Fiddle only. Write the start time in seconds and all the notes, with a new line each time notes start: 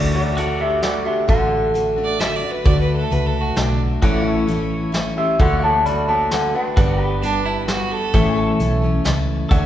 2.04 D5
2.20 E5
2.36 D5
2.51 B4
2.65 D5
2.80 B4
2.97 A4
3.12 B4
3.27 A4
3.41 F#4
3.56 D4
7.22 D4
7.45 E4
7.67 F#4
7.91 A4